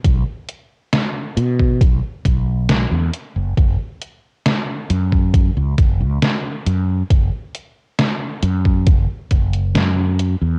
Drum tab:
HH |x-x-x-x-x-x-x-x-|x-x-x-x-x-x-x-x-|x-x-x-x-x-xxx-x-|
SD |----o-------o---|----o-------o---|----o-------o---|
BD |o------oo-o-----|o------oo-o-----|o------oo-o-----|